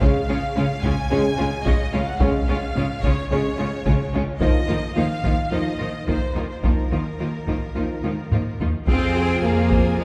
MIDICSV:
0, 0, Header, 1, 9, 480
1, 0, Start_track
1, 0, Tempo, 549451
1, 10, Time_signature, 4, 2, 24, 8
1, 3849, Tempo, 558659
1, 8691, End_track
2, 0, Start_track
2, 0, Title_t, "Violin section"
2, 0, Program_c, 0, 48
2, 4, Note_on_c, 0, 77, 89
2, 716, Note_off_c, 0, 77, 0
2, 729, Note_on_c, 0, 80, 97
2, 1449, Note_off_c, 0, 80, 0
2, 1454, Note_on_c, 0, 75, 92
2, 1691, Note_off_c, 0, 75, 0
2, 1698, Note_on_c, 0, 77, 78
2, 1814, Note_off_c, 0, 77, 0
2, 1825, Note_on_c, 0, 78, 84
2, 1937, Note_off_c, 0, 78, 0
2, 1938, Note_on_c, 0, 77, 86
2, 2638, Note_off_c, 0, 77, 0
2, 2646, Note_on_c, 0, 73, 79
2, 2876, Note_off_c, 0, 73, 0
2, 2886, Note_on_c, 0, 73, 72
2, 3594, Note_off_c, 0, 73, 0
2, 3842, Note_on_c, 0, 75, 78
2, 4289, Note_off_c, 0, 75, 0
2, 4321, Note_on_c, 0, 77, 79
2, 4801, Note_off_c, 0, 77, 0
2, 4809, Note_on_c, 0, 75, 69
2, 5273, Note_on_c, 0, 72, 67
2, 5283, Note_off_c, 0, 75, 0
2, 5511, Note_off_c, 0, 72, 0
2, 5519, Note_on_c, 0, 70, 54
2, 5640, Note_off_c, 0, 70, 0
2, 5642, Note_on_c, 0, 72, 47
2, 5760, Note_off_c, 0, 72, 0
2, 5762, Note_on_c, 0, 70, 52
2, 7421, Note_off_c, 0, 70, 0
2, 7688, Note_on_c, 0, 72, 68
2, 8135, Note_off_c, 0, 72, 0
2, 8169, Note_on_c, 0, 70, 70
2, 8640, Note_on_c, 0, 68, 62
2, 8647, Note_off_c, 0, 70, 0
2, 8691, Note_off_c, 0, 68, 0
2, 8691, End_track
3, 0, Start_track
3, 0, Title_t, "Violin section"
3, 0, Program_c, 1, 48
3, 1, Note_on_c, 1, 61, 57
3, 6, Note_on_c, 1, 65, 59
3, 71, Note_off_c, 1, 61, 0
3, 75, Note_off_c, 1, 65, 0
3, 253, Note_on_c, 1, 61, 60
3, 257, Note_on_c, 1, 65, 62
3, 323, Note_off_c, 1, 61, 0
3, 327, Note_off_c, 1, 65, 0
3, 484, Note_on_c, 1, 61, 55
3, 486, Note_on_c, 1, 65, 56
3, 554, Note_off_c, 1, 61, 0
3, 556, Note_off_c, 1, 65, 0
3, 725, Note_on_c, 1, 61, 60
3, 727, Note_on_c, 1, 65, 55
3, 795, Note_off_c, 1, 61, 0
3, 797, Note_off_c, 1, 65, 0
3, 962, Note_on_c, 1, 61, 57
3, 962, Note_on_c, 1, 65, 58
3, 1032, Note_off_c, 1, 61, 0
3, 1032, Note_off_c, 1, 65, 0
3, 1195, Note_on_c, 1, 61, 54
3, 1198, Note_on_c, 1, 65, 59
3, 1265, Note_off_c, 1, 61, 0
3, 1268, Note_off_c, 1, 65, 0
3, 1438, Note_on_c, 1, 65, 53
3, 1439, Note_on_c, 1, 61, 53
3, 1508, Note_off_c, 1, 65, 0
3, 1509, Note_off_c, 1, 61, 0
3, 1682, Note_on_c, 1, 61, 52
3, 1685, Note_on_c, 1, 65, 53
3, 1752, Note_off_c, 1, 61, 0
3, 1755, Note_off_c, 1, 65, 0
3, 1926, Note_on_c, 1, 65, 63
3, 1931, Note_on_c, 1, 61, 56
3, 1996, Note_off_c, 1, 65, 0
3, 2001, Note_off_c, 1, 61, 0
3, 2172, Note_on_c, 1, 61, 59
3, 2174, Note_on_c, 1, 65, 62
3, 2242, Note_off_c, 1, 61, 0
3, 2244, Note_off_c, 1, 65, 0
3, 2412, Note_on_c, 1, 65, 53
3, 2416, Note_on_c, 1, 61, 57
3, 2482, Note_off_c, 1, 65, 0
3, 2486, Note_off_c, 1, 61, 0
3, 2657, Note_on_c, 1, 65, 56
3, 2659, Note_on_c, 1, 61, 55
3, 2726, Note_off_c, 1, 65, 0
3, 2729, Note_off_c, 1, 61, 0
3, 2890, Note_on_c, 1, 65, 52
3, 2893, Note_on_c, 1, 61, 54
3, 2959, Note_off_c, 1, 65, 0
3, 2963, Note_off_c, 1, 61, 0
3, 3121, Note_on_c, 1, 61, 54
3, 3123, Note_on_c, 1, 65, 50
3, 3191, Note_off_c, 1, 61, 0
3, 3193, Note_off_c, 1, 65, 0
3, 3367, Note_on_c, 1, 61, 52
3, 3368, Note_on_c, 1, 65, 50
3, 3436, Note_off_c, 1, 61, 0
3, 3438, Note_off_c, 1, 65, 0
3, 3613, Note_on_c, 1, 61, 52
3, 3618, Note_on_c, 1, 65, 51
3, 3683, Note_off_c, 1, 61, 0
3, 3688, Note_off_c, 1, 65, 0
3, 3849, Note_on_c, 1, 65, 53
3, 3851, Note_off_c, 1, 65, 0
3, 3851, Note_on_c, 1, 65, 52
3, 3920, Note_off_c, 1, 65, 0
3, 4082, Note_on_c, 1, 65, 50
3, 4083, Note_off_c, 1, 65, 0
3, 4083, Note_on_c, 1, 65, 48
3, 4151, Note_off_c, 1, 65, 0
3, 4320, Note_on_c, 1, 65, 46
3, 4321, Note_off_c, 1, 65, 0
3, 4321, Note_on_c, 1, 65, 46
3, 4390, Note_off_c, 1, 65, 0
3, 4562, Note_on_c, 1, 65, 42
3, 4563, Note_off_c, 1, 65, 0
3, 4563, Note_on_c, 1, 65, 45
3, 4631, Note_off_c, 1, 65, 0
3, 4796, Note_on_c, 1, 65, 45
3, 4799, Note_off_c, 1, 65, 0
3, 4799, Note_on_c, 1, 65, 43
3, 4868, Note_off_c, 1, 65, 0
3, 5034, Note_on_c, 1, 65, 39
3, 5036, Note_off_c, 1, 65, 0
3, 5036, Note_on_c, 1, 65, 42
3, 5105, Note_off_c, 1, 65, 0
3, 5283, Note_on_c, 1, 65, 38
3, 5286, Note_off_c, 1, 65, 0
3, 5286, Note_on_c, 1, 65, 38
3, 5355, Note_off_c, 1, 65, 0
3, 5524, Note_on_c, 1, 65, 36
3, 5525, Note_off_c, 1, 65, 0
3, 5525, Note_on_c, 1, 65, 38
3, 5594, Note_off_c, 1, 65, 0
3, 5760, Note_on_c, 1, 65, 38
3, 5761, Note_off_c, 1, 65, 0
3, 5761, Note_on_c, 1, 65, 36
3, 5830, Note_off_c, 1, 65, 0
3, 6006, Note_on_c, 1, 65, 41
3, 6008, Note_off_c, 1, 65, 0
3, 6008, Note_on_c, 1, 65, 38
3, 6077, Note_off_c, 1, 65, 0
3, 6248, Note_on_c, 1, 65, 37
3, 6253, Note_off_c, 1, 65, 0
3, 6253, Note_on_c, 1, 65, 35
3, 6321, Note_off_c, 1, 65, 0
3, 6488, Note_on_c, 1, 65, 33
3, 6492, Note_off_c, 1, 65, 0
3, 6492, Note_on_c, 1, 65, 37
3, 6561, Note_off_c, 1, 65, 0
3, 6723, Note_on_c, 1, 65, 36
3, 6724, Note_off_c, 1, 65, 0
3, 6724, Note_on_c, 1, 65, 38
3, 6792, Note_off_c, 1, 65, 0
3, 6961, Note_on_c, 1, 65, 32
3, 6968, Note_off_c, 1, 65, 0
3, 6968, Note_on_c, 1, 65, 36
3, 7037, Note_off_c, 1, 65, 0
3, 7207, Note_on_c, 1, 65, 33
3, 7209, Note_off_c, 1, 65, 0
3, 7209, Note_on_c, 1, 65, 37
3, 7278, Note_off_c, 1, 65, 0
3, 7454, Note_on_c, 1, 65, 33
3, 7456, Note_off_c, 1, 65, 0
3, 7456, Note_on_c, 1, 65, 36
3, 7525, Note_off_c, 1, 65, 0
3, 7698, Note_on_c, 1, 68, 56
3, 7701, Note_on_c, 1, 77, 51
3, 7919, Note_off_c, 1, 68, 0
3, 7920, Note_off_c, 1, 77, 0
3, 7936, Note_on_c, 1, 72, 59
3, 7936, Note_on_c, 1, 80, 54
3, 8173, Note_off_c, 1, 72, 0
3, 8173, Note_off_c, 1, 80, 0
3, 8175, Note_on_c, 1, 68, 53
3, 8179, Note_on_c, 1, 77, 52
3, 8411, Note_off_c, 1, 68, 0
3, 8413, Note_off_c, 1, 77, 0
3, 8415, Note_on_c, 1, 80, 52
3, 8417, Note_on_c, 1, 72, 49
3, 8645, Note_on_c, 1, 68, 51
3, 8647, Note_on_c, 1, 77, 48
3, 8651, Note_off_c, 1, 80, 0
3, 8652, Note_off_c, 1, 72, 0
3, 8691, Note_off_c, 1, 68, 0
3, 8691, Note_off_c, 1, 77, 0
3, 8691, End_track
4, 0, Start_track
4, 0, Title_t, "French horn section"
4, 0, Program_c, 2, 60
4, 17, Note_on_c, 2, 61, 68
4, 23, Note_on_c, 2, 68, 65
4, 183, Note_off_c, 2, 61, 0
4, 187, Note_off_c, 2, 68, 0
4, 972, Note_on_c, 2, 68, 69
4, 973, Note_on_c, 2, 61, 62
4, 1139, Note_off_c, 2, 61, 0
4, 1139, Note_off_c, 2, 68, 0
4, 1929, Note_on_c, 2, 68, 63
4, 1934, Note_on_c, 2, 61, 63
4, 2096, Note_off_c, 2, 68, 0
4, 2099, Note_off_c, 2, 61, 0
4, 2888, Note_on_c, 2, 68, 63
4, 2891, Note_on_c, 2, 61, 62
4, 3055, Note_off_c, 2, 68, 0
4, 3058, Note_off_c, 2, 61, 0
4, 3850, Note_on_c, 2, 58, 61
4, 3850, Note_on_c, 2, 63, 59
4, 4016, Note_off_c, 2, 58, 0
4, 4016, Note_off_c, 2, 63, 0
4, 4805, Note_on_c, 2, 63, 49
4, 4812, Note_on_c, 2, 58, 46
4, 4970, Note_off_c, 2, 63, 0
4, 4975, Note_off_c, 2, 58, 0
4, 5763, Note_on_c, 2, 58, 43
4, 5763, Note_on_c, 2, 63, 46
4, 5932, Note_off_c, 2, 58, 0
4, 5932, Note_off_c, 2, 63, 0
4, 6726, Note_on_c, 2, 58, 38
4, 6734, Note_on_c, 2, 63, 37
4, 6896, Note_off_c, 2, 58, 0
4, 6901, Note_off_c, 2, 63, 0
4, 7694, Note_on_c, 2, 68, 58
4, 7697, Note_off_c, 2, 68, 0
4, 7697, Note_on_c, 2, 68, 72
4, 8691, Note_off_c, 2, 68, 0
4, 8691, End_track
5, 0, Start_track
5, 0, Title_t, "Viola section"
5, 0, Program_c, 3, 48
5, 4, Note_on_c, 3, 56, 63
5, 5, Note_on_c, 3, 61, 60
5, 73, Note_off_c, 3, 56, 0
5, 75, Note_off_c, 3, 61, 0
5, 245, Note_on_c, 3, 56, 54
5, 245, Note_on_c, 3, 61, 57
5, 315, Note_off_c, 3, 56, 0
5, 315, Note_off_c, 3, 61, 0
5, 490, Note_on_c, 3, 61, 61
5, 491, Note_on_c, 3, 56, 60
5, 559, Note_off_c, 3, 61, 0
5, 561, Note_off_c, 3, 56, 0
5, 728, Note_on_c, 3, 61, 55
5, 729, Note_on_c, 3, 56, 52
5, 798, Note_off_c, 3, 61, 0
5, 799, Note_off_c, 3, 56, 0
5, 965, Note_on_c, 3, 56, 61
5, 968, Note_on_c, 3, 61, 63
5, 1035, Note_off_c, 3, 56, 0
5, 1037, Note_off_c, 3, 61, 0
5, 1208, Note_on_c, 3, 56, 55
5, 1211, Note_on_c, 3, 61, 57
5, 1278, Note_off_c, 3, 56, 0
5, 1281, Note_off_c, 3, 61, 0
5, 1453, Note_on_c, 3, 61, 57
5, 1454, Note_on_c, 3, 56, 58
5, 1523, Note_off_c, 3, 61, 0
5, 1524, Note_off_c, 3, 56, 0
5, 1690, Note_on_c, 3, 56, 52
5, 1692, Note_on_c, 3, 61, 50
5, 1760, Note_off_c, 3, 56, 0
5, 1762, Note_off_c, 3, 61, 0
5, 1929, Note_on_c, 3, 61, 61
5, 1930, Note_on_c, 3, 56, 63
5, 1999, Note_off_c, 3, 61, 0
5, 2000, Note_off_c, 3, 56, 0
5, 2175, Note_on_c, 3, 61, 53
5, 2178, Note_on_c, 3, 56, 50
5, 2245, Note_off_c, 3, 61, 0
5, 2247, Note_off_c, 3, 56, 0
5, 2412, Note_on_c, 3, 56, 53
5, 2413, Note_on_c, 3, 61, 56
5, 2482, Note_off_c, 3, 56, 0
5, 2483, Note_off_c, 3, 61, 0
5, 2648, Note_on_c, 3, 61, 51
5, 2649, Note_on_c, 3, 56, 52
5, 2718, Note_off_c, 3, 61, 0
5, 2719, Note_off_c, 3, 56, 0
5, 2892, Note_on_c, 3, 56, 56
5, 2896, Note_on_c, 3, 61, 55
5, 2962, Note_off_c, 3, 56, 0
5, 2966, Note_off_c, 3, 61, 0
5, 3136, Note_on_c, 3, 56, 50
5, 3137, Note_on_c, 3, 61, 49
5, 3206, Note_off_c, 3, 56, 0
5, 3207, Note_off_c, 3, 61, 0
5, 3371, Note_on_c, 3, 61, 50
5, 3373, Note_on_c, 3, 56, 52
5, 3441, Note_off_c, 3, 61, 0
5, 3443, Note_off_c, 3, 56, 0
5, 3608, Note_on_c, 3, 56, 47
5, 3608, Note_on_c, 3, 61, 50
5, 3678, Note_off_c, 3, 56, 0
5, 3678, Note_off_c, 3, 61, 0
5, 3848, Note_on_c, 3, 53, 52
5, 3849, Note_on_c, 3, 58, 52
5, 3917, Note_off_c, 3, 53, 0
5, 3918, Note_off_c, 3, 58, 0
5, 4088, Note_on_c, 3, 58, 45
5, 4091, Note_on_c, 3, 53, 48
5, 4157, Note_off_c, 3, 58, 0
5, 4160, Note_off_c, 3, 53, 0
5, 4324, Note_on_c, 3, 53, 45
5, 4328, Note_on_c, 3, 58, 47
5, 4393, Note_off_c, 3, 53, 0
5, 4397, Note_off_c, 3, 58, 0
5, 4567, Note_on_c, 3, 53, 42
5, 4571, Note_on_c, 3, 58, 42
5, 4636, Note_off_c, 3, 53, 0
5, 4639, Note_off_c, 3, 58, 0
5, 4803, Note_on_c, 3, 53, 49
5, 4805, Note_on_c, 3, 58, 44
5, 4872, Note_off_c, 3, 53, 0
5, 4873, Note_off_c, 3, 58, 0
5, 5045, Note_on_c, 3, 53, 39
5, 5046, Note_on_c, 3, 58, 42
5, 5113, Note_off_c, 3, 53, 0
5, 5115, Note_off_c, 3, 58, 0
5, 5279, Note_on_c, 3, 53, 37
5, 5281, Note_on_c, 3, 58, 42
5, 5347, Note_off_c, 3, 53, 0
5, 5349, Note_off_c, 3, 58, 0
5, 5523, Note_on_c, 3, 58, 37
5, 5525, Note_on_c, 3, 53, 34
5, 5592, Note_off_c, 3, 58, 0
5, 5594, Note_off_c, 3, 53, 0
5, 5763, Note_on_c, 3, 53, 40
5, 5764, Note_on_c, 3, 58, 38
5, 5831, Note_off_c, 3, 53, 0
5, 5833, Note_off_c, 3, 58, 0
5, 6003, Note_on_c, 3, 53, 35
5, 6003, Note_on_c, 3, 58, 32
5, 6072, Note_off_c, 3, 53, 0
5, 6072, Note_off_c, 3, 58, 0
5, 6242, Note_on_c, 3, 58, 37
5, 6243, Note_on_c, 3, 53, 38
5, 6311, Note_off_c, 3, 53, 0
5, 6311, Note_off_c, 3, 58, 0
5, 6485, Note_on_c, 3, 53, 35
5, 6485, Note_on_c, 3, 58, 37
5, 6553, Note_off_c, 3, 53, 0
5, 6554, Note_off_c, 3, 58, 0
5, 6720, Note_on_c, 3, 58, 37
5, 6725, Note_on_c, 3, 53, 35
5, 6789, Note_off_c, 3, 58, 0
5, 6793, Note_off_c, 3, 53, 0
5, 6964, Note_on_c, 3, 58, 33
5, 6967, Note_on_c, 3, 53, 35
5, 7033, Note_off_c, 3, 58, 0
5, 7036, Note_off_c, 3, 53, 0
5, 7209, Note_on_c, 3, 53, 34
5, 7212, Note_on_c, 3, 58, 36
5, 7278, Note_off_c, 3, 53, 0
5, 7281, Note_off_c, 3, 58, 0
5, 7455, Note_on_c, 3, 58, 35
5, 7458, Note_on_c, 3, 53, 32
5, 7524, Note_off_c, 3, 58, 0
5, 7526, Note_off_c, 3, 53, 0
5, 7700, Note_on_c, 3, 68, 54
5, 7702, Note_on_c, 3, 65, 58
5, 7920, Note_off_c, 3, 68, 0
5, 7921, Note_off_c, 3, 65, 0
5, 7939, Note_on_c, 3, 65, 52
5, 7940, Note_on_c, 3, 68, 48
5, 8164, Note_off_c, 3, 65, 0
5, 8164, Note_off_c, 3, 68, 0
5, 8174, Note_on_c, 3, 65, 51
5, 8174, Note_on_c, 3, 68, 55
5, 8396, Note_off_c, 3, 65, 0
5, 8399, Note_off_c, 3, 68, 0
5, 8407, Note_on_c, 3, 65, 51
5, 8410, Note_on_c, 3, 68, 50
5, 8642, Note_off_c, 3, 65, 0
5, 8642, Note_off_c, 3, 68, 0
5, 8652, Note_on_c, 3, 68, 57
5, 8653, Note_on_c, 3, 65, 50
5, 8691, Note_off_c, 3, 65, 0
5, 8691, Note_off_c, 3, 68, 0
5, 8691, End_track
6, 0, Start_track
6, 0, Title_t, "Trombone section"
6, 0, Program_c, 4, 61
6, 18, Note_on_c, 4, 49, 66
6, 22, Note_on_c, 4, 56, 65
6, 184, Note_off_c, 4, 49, 0
6, 187, Note_off_c, 4, 56, 0
6, 984, Note_on_c, 4, 49, 69
6, 987, Note_on_c, 4, 56, 68
6, 1147, Note_off_c, 4, 49, 0
6, 1149, Note_off_c, 4, 56, 0
6, 1935, Note_on_c, 4, 56, 67
6, 1938, Note_on_c, 4, 49, 67
6, 2100, Note_off_c, 4, 56, 0
6, 2102, Note_off_c, 4, 49, 0
6, 2895, Note_on_c, 4, 49, 65
6, 2897, Note_on_c, 4, 56, 65
6, 3060, Note_off_c, 4, 49, 0
6, 3061, Note_off_c, 4, 56, 0
6, 3859, Note_on_c, 4, 53, 60
6, 3861, Note_on_c, 4, 51, 53
6, 4022, Note_off_c, 4, 53, 0
6, 4023, Note_off_c, 4, 51, 0
6, 4806, Note_on_c, 4, 53, 51
6, 4807, Note_on_c, 4, 51, 50
6, 4971, Note_off_c, 4, 51, 0
6, 4971, Note_off_c, 4, 53, 0
6, 5763, Note_on_c, 4, 53, 44
6, 5764, Note_on_c, 4, 51, 41
6, 5931, Note_off_c, 4, 53, 0
6, 5932, Note_off_c, 4, 51, 0
6, 6738, Note_on_c, 4, 51, 41
6, 6738, Note_on_c, 4, 53, 40
6, 6904, Note_off_c, 4, 51, 0
6, 6904, Note_off_c, 4, 53, 0
6, 7708, Note_on_c, 4, 53, 62
6, 7711, Note_on_c, 4, 48, 58
6, 8691, Note_off_c, 4, 48, 0
6, 8691, Note_off_c, 4, 53, 0
6, 8691, End_track
7, 0, Start_track
7, 0, Title_t, "Cello section"
7, 0, Program_c, 5, 48
7, 19, Note_on_c, 5, 49, 71
7, 88, Note_off_c, 5, 49, 0
7, 255, Note_on_c, 5, 49, 69
7, 325, Note_off_c, 5, 49, 0
7, 503, Note_on_c, 5, 49, 66
7, 573, Note_off_c, 5, 49, 0
7, 741, Note_on_c, 5, 49, 63
7, 811, Note_off_c, 5, 49, 0
7, 980, Note_on_c, 5, 49, 64
7, 1050, Note_off_c, 5, 49, 0
7, 1220, Note_on_c, 5, 49, 57
7, 1290, Note_off_c, 5, 49, 0
7, 1461, Note_on_c, 5, 49, 67
7, 1531, Note_off_c, 5, 49, 0
7, 1700, Note_on_c, 5, 49, 66
7, 1769, Note_off_c, 5, 49, 0
7, 1945, Note_on_c, 5, 49, 65
7, 2015, Note_off_c, 5, 49, 0
7, 2178, Note_on_c, 5, 49, 62
7, 2248, Note_off_c, 5, 49, 0
7, 2420, Note_on_c, 5, 49, 65
7, 2489, Note_off_c, 5, 49, 0
7, 2666, Note_on_c, 5, 49, 63
7, 2736, Note_off_c, 5, 49, 0
7, 2899, Note_on_c, 5, 49, 62
7, 2969, Note_off_c, 5, 49, 0
7, 3146, Note_on_c, 5, 49, 55
7, 3216, Note_off_c, 5, 49, 0
7, 3387, Note_on_c, 5, 49, 63
7, 3457, Note_off_c, 5, 49, 0
7, 3620, Note_on_c, 5, 49, 61
7, 3690, Note_off_c, 5, 49, 0
7, 3855, Note_on_c, 5, 51, 58
7, 3924, Note_off_c, 5, 51, 0
7, 4098, Note_on_c, 5, 51, 52
7, 4167, Note_off_c, 5, 51, 0
7, 4335, Note_on_c, 5, 51, 55
7, 4403, Note_off_c, 5, 51, 0
7, 4577, Note_on_c, 5, 51, 48
7, 4646, Note_off_c, 5, 51, 0
7, 4817, Note_on_c, 5, 51, 50
7, 4886, Note_off_c, 5, 51, 0
7, 5049, Note_on_c, 5, 51, 47
7, 5117, Note_off_c, 5, 51, 0
7, 5287, Note_on_c, 5, 51, 47
7, 5356, Note_off_c, 5, 51, 0
7, 5527, Note_on_c, 5, 51, 44
7, 5596, Note_off_c, 5, 51, 0
7, 5765, Note_on_c, 5, 51, 40
7, 5834, Note_off_c, 5, 51, 0
7, 6007, Note_on_c, 5, 51, 41
7, 6076, Note_off_c, 5, 51, 0
7, 6243, Note_on_c, 5, 51, 41
7, 6312, Note_off_c, 5, 51, 0
7, 6483, Note_on_c, 5, 51, 37
7, 6552, Note_off_c, 5, 51, 0
7, 6726, Note_on_c, 5, 51, 41
7, 6795, Note_off_c, 5, 51, 0
7, 6974, Note_on_c, 5, 51, 38
7, 7043, Note_off_c, 5, 51, 0
7, 7215, Note_on_c, 5, 51, 40
7, 7284, Note_off_c, 5, 51, 0
7, 7456, Note_on_c, 5, 51, 38
7, 7525, Note_off_c, 5, 51, 0
7, 7702, Note_on_c, 5, 60, 78
7, 8143, Note_off_c, 5, 60, 0
7, 8178, Note_on_c, 5, 58, 79
7, 8651, Note_off_c, 5, 58, 0
7, 8652, Note_on_c, 5, 56, 80
7, 8691, Note_off_c, 5, 56, 0
7, 8691, End_track
8, 0, Start_track
8, 0, Title_t, "Double bass section"
8, 0, Program_c, 6, 48
8, 16, Note_on_c, 6, 37, 70
8, 86, Note_off_c, 6, 37, 0
8, 257, Note_on_c, 6, 37, 64
8, 327, Note_off_c, 6, 37, 0
8, 494, Note_on_c, 6, 37, 69
8, 564, Note_off_c, 6, 37, 0
8, 735, Note_on_c, 6, 37, 59
8, 805, Note_off_c, 6, 37, 0
8, 972, Note_on_c, 6, 37, 72
8, 1042, Note_off_c, 6, 37, 0
8, 1211, Note_on_c, 6, 37, 62
8, 1281, Note_off_c, 6, 37, 0
8, 1452, Note_on_c, 6, 37, 64
8, 1522, Note_off_c, 6, 37, 0
8, 1692, Note_on_c, 6, 37, 64
8, 1762, Note_off_c, 6, 37, 0
8, 1930, Note_on_c, 6, 37, 71
8, 2000, Note_off_c, 6, 37, 0
8, 2171, Note_on_c, 6, 37, 60
8, 2241, Note_off_c, 6, 37, 0
8, 2411, Note_on_c, 6, 37, 65
8, 2481, Note_off_c, 6, 37, 0
8, 2646, Note_on_c, 6, 37, 55
8, 2716, Note_off_c, 6, 37, 0
8, 2885, Note_on_c, 6, 37, 62
8, 2955, Note_off_c, 6, 37, 0
8, 3129, Note_on_c, 6, 37, 60
8, 3199, Note_off_c, 6, 37, 0
8, 3366, Note_on_c, 6, 37, 57
8, 3436, Note_off_c, 6, 37, 0
8, 3611, Note_on_c, 6, 37, 65
8, 3681, Note_off_c, 6, 37, 0
8, 3854, Note_on_c, 6, 39, 67
8, 3923, Note_off_c, 6, 39, 0
8, 4094, Note_on_c, 6, 39, 54
8, 4162, Note_off_c, 6, 39, 0
8, 4331, Note_on_c, 6, 39, 53
8, 4400, Note_off_c, 6, 39, 0
8, 4567, Note_on_c, 6, 39, 48
8, 4636, Note_off_c, 6, 39, 0
8, 4809, Note_on_c, 6, 39, 50
8, 4878, Note_off_c, 6, 39, 0
8, 5043, Note_on_c, 6, 39, 43
8, 5112, Note_off_c, 6, 39, 0
8, 5275, Note_on_c, 6, 39, 45
8, 5344, Note_off_c, 6, 39, 0
8, 5516, Note_on_c, 6, 39, 47
8, 5585, Note_off_c, 6, 39, 0
8, 5761, Note_on_c, 6, 39, 48
8, 5829, Note_off_c, 6, 39, 0
8, 6001, Note_on_c, 6, 39, 42
8, 6069, Note_off_c, 6, 39, 0
8, 6245, Note_on_c, 6, 39, 41
8, 6313, Note_off_c, 6, 39, 0
8, 6483, Note_on_c, 6, 39, 39
8, 6551, Note_off_c, 6, 39, 0
8, 6726, Note_on_c, 6, 39, 43
8, 6794, Note_off_c, 6, 39, 0
8, 6969, Note_on_c, 6, 39, 36
8, 7038, Note_off_c, 6, 39, 0
8, 7211, Note_on_c, 6, 39, 40
8, 7280, Note_off_c, 6, 39, 0
8, 7454, Note_on_c, 6, 39, 42
8, 7523, Note_off_c, 6, 39, 0
8, 7694, Note_on_c, 6, 41, 72
8, 8115, Note_off_c, 6, 41, 0
8, 8171, Note_on_c, 6, 41, 68
8, 8591, Note_off_c, 6, 41, 0
8, 8650, Note_on_c, 6, 41, 69
8, 8691, Note_off_c, 6, 41, 0
8, 8691, End_track
9, 0, Start_track
9, 0, Title_t, "Taiko and cinematic ensemble drums"
9, 8, Note_on_c, 9, 41, 83
9, 96, Note_off_c, 9, 41, 0
9, 732, Note_on_c, 9, 41, 72
9, 820, Note_off_c, 9, 41, 0
9, 1448, Note_on_c, 9, 41, 70
9, 1535, Note_off_c, 9, 41, 0
9, 1925, Note_on_c, 9, 41, 94
9, 2012, Note_off_c, 9, 41, 0
9, 2647, Note_on_c, 9, 41, 72
9, 2734, Note_off_c, 9, 41, 0
9, 3369, Note_on_c, 9, 41, 68
9, 3456, Note_off_c, 9, 41, 0
9, 3847, Note_on_c, 9, 41, 78
9, 3933, Note_off_c, 9, 41, 0
9, 4562, Note_on_c, 9, 41, 71
9, 4648, Note_off_c, 9, 41, 0
9, 5277, Note_on_c, 9, 41, 71
9, 5363, Note_off_c, 9, 41, 0
9, 5759, Note_on_c, 9, 41, 76
9, 5845, Note_off_c, 9, 41, 0
9, 6489, Note_on_c, 9, 41, 70
9, 6574, Note_off_c, 9, 41, 0
9, 6971, Note_on_c, 9, 48, 64
9, 7056, Note_off_c, 9, 48, 0
9, 7210, Note_on_c, 9, 45, 73
9, 7296, Note_off_c, 9, 45, 0
9, 7450, Note_on_c, 9, 43, 74
9, 7536, Note_off_c, 9, 43, 0
9, 7687, Note_on_c, 9, 41, 88
9, 7773, Note_off_c, 9, 41, 0
9, 8408, Note_on_c, 9, 41, 76
9, 8494, Note_off_c, 9, 41, 0
9, 8691, End_track
0, 0, End_of_file